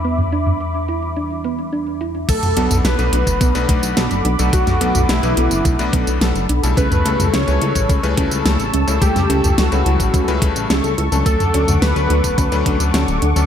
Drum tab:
CC |----------------|x---------------|----------------|----------------|
HH |xxxxxxxxxxxxxxxx|xxxxxxxxxxxxxxxx|xxxxxxxxxxxxxxxx|xxxxxxxxxxxxxxxx|
TB |----------------|xx-xxx-xxx-xxx-x|xx-xxx-xxx-xxx-x|xx-xxx-xxx-xxx-x|
SD |----------------|----o-------o---|-o--o-------o---|----o-------o---|
T2 |-o-o------------|-o-o------------|-o-o------------|-o-o------------|
BD |----------------|o------oo-o-----|o-------o-o-----|o------oo-o-----|

CC |----------------|----------------|
HH |xxxxxxxxxxxxxxxx|xxxxxxxxxxxxxxxx|
TB |xx-xxx-xxx-xxx-x|xx-xxx-xxx-xxx-x|
SD |-o--o-------o---|----o-------o---|
T2 |-o-o------------|-o-o------------|
BD |o------oo-o-----|o------oo-o-----|